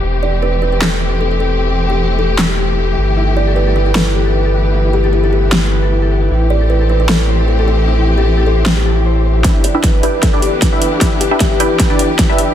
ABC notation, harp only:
X:1
M:4/4
L:1/16
Q:"Swing 16ths" 1/4=153
K:Em
V:1 name="Harp"
z16 | z16 | E E G A E A B E A E B A E A B E | E E G A E A B E z E B A E A B E |
E E G A E A c E A E c A E A c E | E E G A E A c E z E a E c c c E | z E G B z B d E z E d B z B d E | E E G B z B d E B E d B E B d E |]